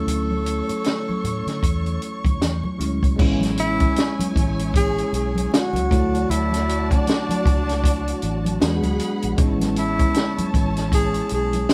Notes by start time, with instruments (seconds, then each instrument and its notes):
Already playing: tine electric piano F#3 A3 C#4 E4, tenor saxophone A4, string section C#5 C#6
0.07 fingered electric bass D2, closed hi-hat, muted conga, low conga
0.30 muted conga, high conga
0.46 closed hi-hat
0.69 muted fingered electric bass stroke, closed hi-hat
0.84 snare, closed hi-hat, muted conga
1.09 muted conga, high conga
1.24 fingered electric bass A2, closed hi-hat, low conga
1.47 fingered electric bass D3, snare, closed hi-hat
1.63 fingered electric bass E2, kick, closed hi-hat
1.86 closed hi-hat
2.02 closed hi-hat
2.25 fingered electric bass D2, kick, closed hi-hat, high conga
2.41 fingered electric bass E2, snare, closed hi-hat
2.64 muted conga, high conga, low conga
2.78 fingered electric bass D2, tine electric piano F#3 G#3 C#4 E4, closed hi-hat
3.03 fingered electric bass C#2, kick, closed hi-hat
3.16 fingered electric bass A1, tine electric piano G#3 B3 C#4, string section E4 C#5 G#5, kick, crash, muted conga, low conga
3.21 tine electric piano E4
3.41 snare, closed hi-hat, muted conga, high conga
3.58 tenor saxophone E4, closed hi-hat
3.80 kick, closed hi-hat
3.96 snare, closed hi-hat, muted conga
4.19 muted fingered electric bass stroke, closed hi-hat, muted conga, high conga
4.35 fingered electric bass A1, kick, closed hi-hat, low conga
4.59 closed hi-hat
4.72 tenor saxophone G#4, kick, closed hi-hat, muted conga
4.98 closed hi-hat
5.13 fingered electric bass B1, tenor saxophone G#4, closed hi-hat
5.35 closed hi-hat, high conga
5.51 tenor saxophone F#4, snare, closed hi-hat, muted conga
5.73 fingered electric bass C#2, closed hi-hat, high conga, low conga
5.88 fingered electric bass D2, tine electric piano F#3 A3 C#5, string section F#4 D5 A5, kick
5.92 tine electric piano E4, closed hi-hat
6.15 closed hi-hat
6.30 fingered electric bass D2, tenor saxophone E4, closed hi-hat, low conga
6.51 closed hi-hat, high conga
6.55 snare
6.69 closed hi-hat
6.91 tenor saxophone D4, kick, closed hi-hat
7.06 snare, closed hi-hat, muted conga
7.29 muted fingered electric bass stroke, closed hi-hat, muted conga, high conga
7.45 fingered electric bass C#2, kick, closed hi-hat, low conga
7.69 snare, closed hi-hat
7.84 kick, closed hi-hat
8.08 closed hi-hat
8.22 fingered electric bass A1, closed hi-hat
8.45 closed hi-hat, high conga
8.60 fingered electric bass E2, tine electric piano F#3 B3 D4 F#4, string section G#4 F#5 B5, snare, closed hi-hat, muted conga
8.66 tine electric piano G#3
8.83 fingered electric bass D2, closed hi-hat, high conga, low conga
8.99 closed hi-hat
9.22 fingered electric bass A#1, closed hi-hat
9.36 fingered electric bass A1, tine electric piano G#3 B3 C#4, string section E4 C#5 A5, kick, closed hi-hat, muted conga, low conga
9.41 tine electric piano D#4
9.48 tine electric piano E4
9.60 snare, closed hi-hat, high conga
9.76 tenor saxophone E4, closed hi-hat
9.99 kick, closed hi-hat
10.14 snare, closed hi-hat, muted conga
10.38 muted fingered electric bass stroke, closed hi-hat, muted conga, high conga
10.54 fingered electric bass A1, kick, closed hi-hat, low conga
10.77 snare, closed hi-hat
10.92 tenor saxophone G#4, kick, closed hi-hat
11.14 closed hi-hat
11.29 fingered electric bass B1, closed hi-hat
11.34 tenor saxophone G#4
11.53 closed hi-hat, high conga
11.69 snare, closed hi-hat, muted conga